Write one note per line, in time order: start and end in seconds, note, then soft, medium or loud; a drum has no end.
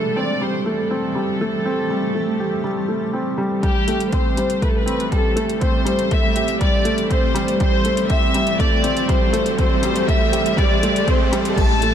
0.00 3.60 E3 medium
0.00 0.41 G3 medium
0.00 3.60 G3 medium
0.00 0.15 A3 medium
0.00 3.60 A3 medium
0.00 3.60 C4 medium
0.00 3.60 G4 medium
0.00 0.17 A4 medium
0.16 0.31 C4 medium
0.16 0.42 D5 medium
0.41 0.65 G3 medium
0.41 0.67 C5 medium
0.66 0.80 A3 medium
0.66 3.14 A4 medium
0.91 1.14 C4 medium
1.15 1.39 G3 medium
1.41 1.64 A3 medium
1.65 1.80 C4 medium
1.90 2.14 G3 medium
2.14 2.29 A3 medium
2.40 2.63 G4 medium
2.64 2.88 G3 medium
2.88 3.03 A3 medium
3.13 3.37 C4 medium
3.38 3.61 G3 medium
3.63 11.54 A1 medium
3.63 11.53 E3 medium
3.63 3.87 G3 medium
3.63 11.53 G3 medium
3.63 11.53 A3 medium
3.63 11.53 C4 medium
3.63 11.53 G4 medium
3.63 4.10 G4 medium
3.63 kick medium
3.63 closed hi-hat soft
3.63 riser medium
3.87 4.12 A3 medium
3.87 closed hi-hat medium
4.00 closed hi-hat soft
4.12 4.27 C4 medium
4.12 4.63 C5 medium
4.12 kick medium
4.12 closed hi-hat soft
4.37 4.61 G3 medium
4.37 closed hi-hat medium
4.50 closed hi-hat soft
4.62 4.76 A3 medium
4.62 4.70 B4 medium
4.62 kick medium
4.62 closed hi-hat soft
4.69 4.77 A4 medium
4.77 5.13 B4 loud
4.86 5.10 C4 medium
4.86 closed hi-hat medium
5.00 closed hi-hat soft
5.12 5.36 G3 medium
5.12 5.59 A4 medium
5.12 kick medium
5.12 closed hi-hat soft
5.36 5.60 A3 medium
5.36 closed hi-hat medium
5.50 closed hi-hat soft
5.61 5.76 C4 medium
5.61 6.12 C5 medium
5.61 kick loud
5.61 closed hi-hat soft
5.85 6.10 G3 medium
5.85 closed hi-hat medium
5.99 closed hi-hat soft
6.11 6.25 A3 medium
6.11 6.62 E5 loud
6.11 kick loud
6.11 closed hi-hat soft
6.36 6.60 G4 medium
6.36 closed hi-hat medium
6.48 closed hi-hat soft
6.61 6.85 G3 medium
6.61 7.07 D5 medium
6.61 kick loud
6.61 closed hi-hat soft
6.85 7.00 A3 medium
6.85 closed hi-hat medium
6.98 closed hi-hat soft
7.10 7.34 C4 medium
7.10 7.59 C5 medium
7.10 kick medium
7.10 closed hi-hat soft
7.35 7.59 G3 medium
7.35 closed hi-hat medium
7.48 closed hi-hat soft
7.60 7.84 G3 medium
7.60 8.06 C5 loud
7.60 kick loud
7.60 closed hi-hat soft
7.85 8.08 A3 medium
7.85 closed hi-hat medium
7.97 closed hi-hat soft
8.10 8.24 C4 medium
8.10 8.60 E5 loud
8.10 kick loud
8.10 closed hi-hat soft
8.34 8.58 G3 medium
8.34 closed hi-hat medium
8.47 closed hi-hat soft
8.59 8.73 A3 medium
8.59 9.09 D5 loud
8.59 kick loud
8.59 closed hi-hat soft
8.84 9.08 C4 medium
8.84 closed hi-hat medium
8.97 closed hi-hat soft
9.08 9.32 G3 medium
9.08 9.58 C5 medium
9.08 kick loud
9.08 closed hi-hat soft
9.33 9.57 A3 loud
9.33 closed hi-hat medium
9.46 closed hi-hat soft
9.58 9.72 C4 medium
9.58 10.05 C5 loud
9.58 kick loud
9.58 closed hi-hat soft
9.83 10.07 G3 medium
9.83 closed hi-hat medium
9.96 closed hi-hat soft
10.08 10.22 A3 medium
10.08 10.58 E5 loud
10.08 kick loud
10.08 closed hi-hat soft
10.32 10.56 G4 medium
10.32 closed hi-hat medium
10.46 closed hi-hat soft
10.57 10.81 G3 medium
10.57 11.08 D5 loud
10.57 kick loud
10.57 closed hi-hat soft
10.83 10.97 A3 medium
10.83 closed hi-hat medium
10.96 closed hi-hat soft
11.08 11.31 C4 medium
11.08 11.57 C5 medium
11.08 kick loud
11.08 closed hi-hat soft
11.32 11.56 G3 loud
11.32 closed hi-hat medium
11.45 closed hi-hat soft
11.57 11.94 A1 medium
11.57 11.81 G3 medium
11.57 11.94 A5 loud
11.57 kick loud
11.57 closed hi-hat soft
11.57 crash loud
11.82 11.94 A3 medium
11.82 closed hi-hat medium